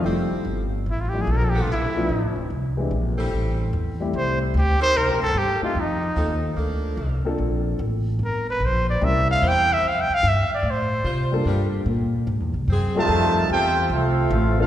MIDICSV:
0, 0, Header, 1, 8, 480
1, 0, Start_track
1, 0, Key_signature, -1, "major"
1, 0, Tempo, 407332
1, 67, Time_signature, 4, 2, 24, 8
1, 17284, End_track
2, 0, Start_track
2, 0, Title_t, "Trumpet section"
2, 0, Program_c, 0, 61
2, 15292, Note_on_c, 0, 81, 124
2, 15294, Note_on_c, 0, 65, 98
2, 15296, Note_on_c, 0, 72, 89
2, 15296, Note_on_c, 0, 76, 101
2, 15879, Note_off_c, 0, 81, 0
2, 15880, Note_off_c, 0, 65, 0
2, 15881, Note_off_c, 0, 72, 0
2, 15881, Note_off_c, 0, 76, 0
2, 15934, Note_on_c, 0, 65, 97
2, 15940, Note_on_c, 0, 76, 89
2, 15942, Note_on_c, 0, 72, 100
2, 15946, Note_on_c, 0, 79, 123
2, 16368, Note_off_c, 0, 65, 0
2, 16372, Note_off_c, 0, 72, 0
2, 16372, Note_off_c, 0, 76, 0
2, 16375, Note_off_c, 0, 79, 0
2, 16421, Note_on_c, 0, 77, 113
2, 16423, Note_on_c, 0, 69, 90
2, 16428, Note_on_c, 0, 76, 81
2, 16429, Note_on_c, 0, 60, 84
2, 17193, Note_off_c, 0, 77, 0
2, 17198, Note_off_c, 0, 60, 0
2, 17199, Note_off_c, 0, 69, 0
2, 17202, Note_off_c, 0, 76, 0
2, 17208, Note_on_c, 0, 77, 100
2, 17212, Note_on_c, 0, 60, 76
2, 17214, Note_on_c, 0, 69, 83
2, 17216, Note_on_c, 0, 64, 88
2, 17284, Note_off_c, 0, 60, 0
2, 17284, Note_off_c, 0, 64, 0
2, 17284, Note_off_c, 0, 69, 0
2, 17284, Note_off_c, 0, 77, 0
2, 17284, End_track
3, 0, Start_track
3, 0, Title_t, "Trumpet"
3, 0, Program_c, 1, 56
3, 1071, Note_on_c, 1, 64, 67
3, 1190, Note_on_c, 1, 65, 71
3, 1208, Note_off_c, 1, 64, 0
3, 1286, Note_on_c, 1, 67, 79
3, 1303, Note_off_c, 1, 65, 0
3, 1429, Note_on_c, 1, 68, 77
3, 1447, Note_off_c, 1, 67, 0
3, 1547, Note_on_c, 1, 69, 81
3, 1564, Note_off_c, 1, 68, 0
3, 1612, Note_on_c, 1, 70, 93
3, 1629, Note_off_c, 1, 69, 0
3, 1704, Note_on_c, 1, 69, 75
3, 1722, Note_off_c, 1, 70, 0
3, 1763, Note_on_c, 1, 67, 85
3, 1781, Note_off_c, 1, 69, 0
3, 1906, Note_on_c, 1, 65, 74
3, 1924, Note_off_c, 1, 67, 0
3, 1989, Note_off_c, 1, 65, 0
3, 2026, Note_on_c, 1, 64, 78
3, 2922, Note_off_c, 1, 64, 0
3, 4907, Note_on_c, 1, 72, 81
3, 5184, Note_off_c, 1, 72, 0
3, 5202, Note_on_c, 1, 64, 49
3, 5388, Note_on_c, 1, 67, 95
3, 5390, Note_off_c, 1, 64, 0
3, 5675, Note_off_c, 1, 67, 0
3, 5682, Note_on_c, 1, 72, 120
3, 5857, Note_on_c, 1, 70, 95
3, 5875, Note_off_c, 1, 72, 0
3, 6144, Note_off_c, 1, 70, 0
3, 6151, Note_on_c, 1, 69, 104
3, 6337, Note_on_c, 1, 67, 92
3, 6354, Note_off_c, 1, 69, 0
3, 6639, Note_off_c, 1, 67, 0
3, 6647, Note_on_c, 1, 65, 80
3, 6836, Note_on_c, 1, 63, 86
3, 6854, Note_off_c, 1, 65, 0
3, 7774, Note_off_c, 1, 63, 0
3, 9717, Note_on_c, 1, 70, 82
3, 9989, Note_off_c, 1, 70, 0
3, 10017, Note_on_c, 1, 71, 94
3, 10194, Note_on_c, 1, 72, 96
3, 10212, Note_off_c, 1, 71, 0
3, 10476, Note_off_c, 1, 72, 0
3, 10484, Note_on_c, 1, 74, 80
3, 10660, Note_on_c, 1, 76, 92
3, 10678, Note_off_c, 1, 74, 0
3, 10962, Note_off_c, 1, 76, 0
3, 10970, Note_on_c, 1, 77, 95
3, 11169, Note_on_c, 1, 79, 99
3, 11187, Note_off_c, 1, 77, 0
3, 11465, Note_on_c, 1, 76, 96
3, 11482, Note_off_c, 1, 79, 0
3, 11646, Note_on_c, 1, 77, 90
3, 11663, Note_off_c, 1, 76, 0
3, 11796, Note_on_c, 1, 79, 92
3, 11814, Note_off_c, 1, 77, 0
3, 11952, Note_on_c, 1, 77, 106
3, 11969, Note_off_c, 1, 79, 0
3, 12121, Note_on_c, 1, 76, 91
3, 12138, Note_off_c, 1, 77, 0
3, 12412, Note_off_c, 1, 76, 0
3, 12425, Note_on_c, 1, 74, 78
3, 12613, Note_on_c, 1, 72, 86
3, 12631, Note_off_c, 1, 74, 0
3, 13378, Note_off_c, 1, 72, 0
3, 17284, End_track
4, 0, Start_track
4, 0, Title_t, "Saxophone section"
4, 0, Program_c, 2, 65
4, 67, Note_on_c, 2, 53, 76
4, 69, Note_on_c, 2, 69, 84
4, 73, Note_on_c, 2, 60, 83
4, 76, Note_on_c, 2, 64, 83
4, 800, Note_off_c, 2, 53, 0
4, 801, Note_off_c, 2, 69, 0
4, 804, Note_off_c, 2, 60, 0
4, 805, Note_off_c, 2, 64, 0
4, 1831, Note_on_c, 2, 59, 86
4, 1833, Note_on_c, 2, 62, 80
4, 1837, Note_on_c, 2, 53, 89
4, 1838, Note_on_c, 2, 69, 92
4, 2441, Note_off_c, 2, 59, 0
4, 2442, Note_off_c, 2, 62, 0
4, 2444, Note_off_c, 2, 53, 0
4, 2444, Note_off_c, 2, 69, 0
4, 3750, Note_on_c, 2, 69, 98
4, 3751, Note_on_c, 2, 60, 75
4, 3754, Note_on_c, 2, 55, 93
4, 3757, Note_on_c, 2, 64, 88
4, 4360, Note_off_c, 2, 69, 0
4, 4361, Note_off_c, 2, 60, 0
4, 4362, Note_off_c, 2, 55, 0
4, 4364, Note_off_c, 2, 64, 0
4, 5662, Note_on_c, 2, 60, 93
4, 5665, Note_on_c, 2, 70, 108
4, 5666, Note_on_c, 2, 55, 107
4, 5670, Note_on_c, 2, 63, 94
4, 6276, Note_off_c, 2, 60, 0
4, 6278, Note_off_c, 2, 55, 0
4, 6278, Note_off_c, 2, 70, 0
4, 6280, Note_off_c, 2, 63, 0
4, 7256, Note_on_c, 2, 60, 85
4, 7259, Note_on_c, 2, 63, 86
4, 7263, Note_on_c, 2, 53, 95
4, 7263, Note_on_c, 2, 69, 94
4, 7724, Note_off_c, 2, 53, 0
4, 7729, Note_off_c, 2, 69, 0
4, 7738, Note_on_c, 2, 53, 82
4, 7741, Note_on_c, 2, 58, 89
4, 7743, Note_on_c, 2, 62, 81
4, 7743, Note_on_c, 2, 69, 107
4, 7744, Note_off_c, 2, 60, 0
4, 7745, Note_off_c, 2, 63, 0
4, 8477, Note_off_c, 2, 53, 0
4, 8479, Note_off_c, 2, 58, 0
4, 8480, Note_off_c, 2, 62, 0
4, 8480, Note_off_c, 2, 69, 0
4, 11105, Note_on_c, 2, 64, 83
4, 11108, Note_on_c, 2, 72, 91
4, 11111, Note_on_c, 2, 58, 92
4, 11589, Note_off_c, 2, 64, 0
4, 11590, Note_off_c, 2, 72, 0
4, 11592, Note_off_c, 2, 58, 0
4, 13025, Note_on_c, 2, 72, 100
4, 13027, Note_on_c, 2, 65, 83
4, 13502, Note_off_c, 2, 65, 0
4, 13509, Note_off_c, 2, 72, 0
4, 13514, Note_on_c, 2, 70, 85
4, 13516, Note_on_c, 2, 65, 79
4, 13519, Note_on_c, 2, 62, 77
4, 13520, Note_on_c, 2, 55, 90
4, 13726, Note_off_c, 2, 70, 0
4, 13727, Note_off_c, 2, 65, 0
4, 13729, Note_off_c, 2, 62, 0
4, 13730, Note_off_c, 2, 55, 0
4, 14967, Note_on_c, 2, 60, 84
4, 14969, Note_on_c, 2, 68, 100
4, 15438, Note_off_c, 2, 60, 0
4, 15439, Note_off_c, 2, 68, 0
4, 17284, End_track
5, 0, Start_track
5, 0, Title_t, "Grand piano"
5, 0, Program_c, 3, 0
5, 53, Note_on_c, 3, 53, 53
5, 58, Note_on_c, 3, 55, 54
5, 58, Note_on_c, 3, 57, 51
5, 70, Note_on_c, 3, 60, 49
5, 80, Note_on_c, 3, 64, 57
5, 344, Note_off_c, 3, 53, 0
5, 347, Note_off_c, 3, 55, 0
5, 347, Note_off_c, 3, 57, 0
5, 353, Note_off_c, 3, 60, 0
5, 358, Note_off_c, 3, 64, 0
5, 1336, Note_on_c, 3, 53, 55
5, 1339, Note_on_c, 3, 55, 50
5, 1349, Note_on_c, 3, 60, 57
5, 1351, Note_on_c, 3, 57, 54
5, 1356, Note_on_c, 3, 64, 54
5, 1489, Note_off_c, 3, 53, 0
5, 1490, Note_off_c, 3, 55, 0
5, 1496, Note_off_c, 3, 57, 0
5, 1496, Note_off_c, 3, 60, 0
5, 1499, Note_off_c, 3, 64, 0
5, 2307, Note_on_c, 3, 53, 63
5, 2311, Note_on_c, 3, 57, 54
5, 2319, Note_on_c, 3, 59, 59
5, 2323, Note_on_c, 3, 62, 63
5, 2327, Note_on_c, 3, 65, 66
5, 2455, Note_off_c, 3, 53, 0
5, 2457, Note_off_c, 3, 57, 0
5, 2461, Note_off_c, 3, 59, 0
5, 2463, Note_off_c, 3, 62, 0
5, 2465, Note_off_c, 3, 65, 0
5, 3265, Note_on_c, 3, 52, 66
5, 3272, Note_on_c, 3, 56, 63
5, 3277, Note_on_c, 3, 62, 55
5, 3282, Note_on_c, 3, 60, 57
5, 3291, Note_on_c, 3, 67, 63
5, 3414, Note_off_c, 3, 52, 0
5, 3418, Note_off_c, 3, 56, 0
5, 3420, Note_off_c, 3, 62, 0
5, 3423, Note_off_c, 3, 60, 0
5, 3427, Note_off_c, 3, 67, 0
5, 4715, Note_on_c, 3, 55, 65
5, 4722, Note_on_c, 3, 57, 63
5, 4730, Note_on_c, 3, 60, 60
5, 4731, Note_on_c, 3, 64, 58
5, 4736, Note_on_c, 3, 67, 74
5, 5323, Note_off_c, 3, 55, 0
5, 5326, Note_off_c, 3, 57, 0
5, 5330, Note_off_c, 3, 60, 0
5, 5331, Note_off_c, 3, 64, 0
5, 5333, Note_off_c, 3, 67, 0
5, 6618, Note_on_c, 3, 57, 68
5, 6629, Note_on_c, 3, 60, 59
5, 6634, Note_on_c, 3, 63, 56
5, 6640, Note_on_c, 3, 65, 63
5, 6648, Note_on_c, 3, 67, 76
5, 6771, Note_off_c, 3, 57, 0
5, 6776, Note_off_c, 3, 60, 0
5, 6779, Note_off_c, 3, 63, 0
5, 6782, Note_off_c, 3, 65, 0
5, 6786, Note_off_c, 3, 67, 0
5, 8537, Note_on_c, 3, 58, 64
5, 8544, Note_on_c, 3, 60, 63
5, 8554, Note_on_c, 3, 62, 60
5, 8558, Note_on_c, 3, 65, 65
5, 8562, Note_on_c, 3, 69, 74
5, 9154, Note_off_c, 3, 58, 0
5, 9158, Note_off_c, 3, 60, 0
5, 9163, Note_off_c, 3, 62, 0
5, 9165, Note_off_c, 3, 65, 0
5, 9167, Note_off_c, 3, 69, 0
5, 10619, Note_on_c, 3, 55, 68
5, 10626, Note_on_c, 3, 60, 59
5, 10630, Note_on_c, 3, 61, 58
5, 10636, Note_on_c, 3, 64, 60
5, 10642, Note_on_c, 3, 70, 69
5, 11358, Note_off_c, 3, 55, 0
5, 11362, Note_off_c, 3, 60, 0
5, 11364, Note_off_c, 3, 61, 0
5, 11367, Note_off_c, 3, 64, 0
5, 11370, Note_off_c, 3, 70, 0
5, 13337, Note_on_c, 3, 55, 66
5, 13347, Note_on_c, 3, 58, 62
5, 13355, Note_on_c, 3, 65, 54
5, 13356, Note_on_c, 3, 62, 61
5, 13360, Note_on_c, 3, 69, 76
5, 13954, Note_off_c, 3, 55, 0
5, 13959, Note_off_c, 3, 58, 0
5, 13963, Note_off_c, 3, 65, 0
5, 13964, Note_off_c, 3, 62, 0
5, 13966, Note_off_c, 3, 69, 0
5, 15261, Note_on_c, 3, 55, 70
5, 15272, Note_on_c, 3, 60, 71
5, 15276, Note_on_c, 3, 76, 63
5, 15285, Note_on_c, 3, 65, 68
5, 15289, Note_on_c, 3, 69, 73
5, 15874, Note_off_c, 3, 55, 0
5, 15880, Note_off_c, 3, 60, 0
5, 15882, Note_off_c, 3, 76, 0
5, 15886, Note_off_c, 3, 65, 0
5, 15888, Note_off_c, 3, 69, 0
5, 17183, Note_on_c, 3, 57, 64
5, 17190, Note_on_c, 3, 59, 57
5, 17197, Note_on_c, 3, 62, 68
5, 17202, Note_on_c, 3, 65, 68
5, 17208, Note_on_c, 3, 69, 77
5, 17284, Note_off_c, 3, 57, 0
5, 17284, Note_off_c, 3, 59, 0
5, 17284, Note_off_c, 3, 62, 0
5, 17284, Note_off_c, 3, 65, 0
5, 17284, Note_off_c, 3, 69, 0
5, 17284, End_track
6, 0, Start_track
6, 0, Title_t, "Trombone section"
6, 0, Program_c, 4, 61
6, 15264, Note_on_c, 4, 48, 92
6, 15265, Note_on_c, 4, 57, 94
6, 15270, Note_on_c, 4, 51, 99
6, 15864, Note_off_c, 4, 48, 0
6, 15864, Note_off_c, 4, 57, 0
6, 15867, Note_off_c, 4, 51, 0
6, 15902, Note_on_c, 4, 67, 74
6, 15904, Note_on_c, 4, 60, 76
6, 15914, Note_on_c, 4, 65, 77
6, 16351, Note_off_c, 4, 67, 0
6, 16353, Note_off_c, 4, 60, 0
6, 16358, Note_off_c, 4, 65, 0
6, 16405, Note_on_c, 4, 65, 84
6, 16411, Note_on_c, 4, 57, 93
6, 16416, Note_on_c, 4, 60, 85
6, 17191, Note_off_c, 4, 57, 0
6, 17191, Note_off_c, 4, 65, 0
6, 17196, Note_off_c, 4, 60, 0
6, 17205, Note_on_c, 4, 57, 78
6, 17214, Note_on_c, 4, 60, 78
6, 17214, Note_on_c, 4, 65, 73
6, 17284, Note_off_c, 4, 57, 0
6, 17284, Note_off_c, 4, 60, 0
6, 17284, Note_off_c, 4, 65, 0
6, 17284, End_track
7, 0, Start_track
7, 0, Title_t, "Upright bass"
7, 0, Program_c, 5, 32
7, 47, Note_on_c, 5, 29, 81
7, 350, Note_off_c, 5, 29, 0
7, 527, Note_on_c, 5, 31, 94
7, 1003, Note_off_c, 5, 31, 0
7, 1014, Note_on_c, 5, 33, 86
7, 1487, Note_off_c, 5, 33, 0
7, 1496, Note_on_c, 5, 34, 95
7, 1965, Note_off_c, 5, 34, 0
7, 1972, Note_on_c, 5, 35, 84
7, 2447, Note_off_c, 5, 35, 0
7, 2462, Note_on_c, 5, 33, 88
7, 2618, Note_on_c, 5, 29, 60
7, 2635, Note_off_c, 5, 33, 0
7, 2771, Note_off_c, 5, 29, 0
7, 2778, Note_on_c, 5, 26, 62
7, 2933, Note_off_c, 5, 26, 0
7, 2949, Note_on_c, 5, 36, 80
7, 3416, Note_off_c, 5, 36, 0
7, 3427, Note_on_c, 5, 34, 91
7, 3895, Note_off_c, 5, 34, 0
7, 3906, Note_on_c, 5, 33, 88
7, 4375, Note_off_c, 5, 33, 0
7, 4395, Note_on_c, 5, 40, 94
7, 4859, Note_off_c, 5, 40, 0
7, 4870, Note_on_c, 5, 36, 92
7, 5337, Note_off_c, 5, 36, 0
7, 5350, Note_on_c, 5, 38, 96
7, 5644, Note_off_c, 5, 38, 0
7, 5825, Note_on_c, 5, 36, 81
7, 5981, Note_off_c, 5, 36, 0
7, 5981, Note_on_c, 5, 34, 57
7, 6134, Note_off_c, 5, 34, 0
7, 6141, Note_on_c, 5, 31, 70
7, 6288, Note_off_c, 5, 31, 0
7, 6295, Note_on_c, 5, 43, 90
7, 6596, Note_off_c, 5, 43, 0
7, 6778, Note_on_c, 5, 41, 86
7, 7250, Note_off_c, 5, 41, 0
7, 7260, Note_on_c, 5, 39, 89
7, 7732, Note_off_c, 5, 39, 0
7, 7737, Note_on_c, 5, 38, 74
7, 8210, Note_off_c, 5, 38, 0
7, 8216, Note_on_c, 5, 36, 90
7, 8516, Note_off_c, 5, 36, 0
7, 8699, Note_on_c, 5, 34, 86
7, 9171, Note_off_c, 5, 34, 0
7, 9179, Note_on_c, 5, 33, 94
7, 9644, Note_off_c, 5, 33, 0
7, 9651, Note_on_c, 5, 31, 81
7, 10127, Note_off_c, 5, 31, 0
7, 10134, Note_on_c, 5, 34, 95
7, 10609, Note_off_c, 5, 34, 0
7, 10622, Note_on_c, 5, 36, 93
7, 11093, Note_off_c, 5, 36, 0
7, 11100, Note_on_c, 5, 40, 97
7, 11566, Note_off_c, 5, 40, 0
7, 11573, Note_on_c, 5, 41, 78
7, 11876, Note_off_c, 5, 41, 0
7, 12056, Note_on_c, 5, 43, 93
7, 12357, Note_off_c, 5, 43, 0
7, 12526, Note_on_c, 5, 45, 93
7, 13005, Note_off_c, 5, 45, 0
7, 13015, Note_on_c, 5, 48, 89
7, 13489, Note_off_c, 5, 48, 0
7, 13496, Note_on_c, 5, 43, 79
7, 13966, Note_off_c, 5, 43, 0
7, 13973, Note_on_c, 5, 46, 91
7, 14448, Note_off_c, 5, 46, 0
7, 14457, Note_on_c, 5, 44, 95
7, 14613, Note_off_c, 5, 44, 0
7, 14613, Note_on_c, 5, 40, 65
7, 14768, Note_off_c, 5, 40, 0
7, 14775, Note_on_c, 5, 36, 77
7, 14931, Note_off_c, 5, 36, 0
7, 14938, Note_on_c, 5, 42, 86
7, 15409, Note_off_c, 5, 42, 0
7, 15420, Note_on_c, 5, 41, 93
7, 15890, Note_off_c, 5, 41, 0
7, 15905, Note_on_c, 5, 40, 100
7, 16367, Note_off_c, 5, 40, 0
7, 16374, Note_on_c, 5, 36, 92
7, 16846, Note_off_c, 5, 36, 0
7, 16857, Note_on_c, 5, 33, 110
7, 17284, Note_off_c, 5, 33, 0
7, 17284, End_track
8, 0, Start_track
8, 0, Title_t, "Muted upright bass strokes"
8, 376, Note_on_c, 9, 29, 39
8, 494, Note_off_c, 9, 29, 0
8, 5663, Note_on_c, 9, 29, 39
8, 5781, Note_off_c, 9, 29, 0
8, 6616, Note_on_c, 9, 29, 36
8, 6734, Note_off_c, 9, 29, 0
8, 8533, Note_on_c, 9, 29, 38
8, 8651, Note_off_c, 9, 29, 0
8, 11897, Note_on_c, 9, 29, 44
8, 12015, Note_off_c, 9, 29, 0
8, 12366, Note_on_c, 9, 29, 36
8, 12484, Note_off_c, 9, 29, 0
8, 17284, End_track
0, 0, End_of_file